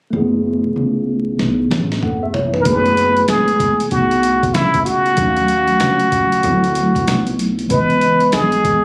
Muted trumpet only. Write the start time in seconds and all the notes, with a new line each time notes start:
2.61 A#4
2.67 B4
3.29 G#4
3.91 F#4
4.54 E4
4.85 F#4
7.71 B4
8.34 G#4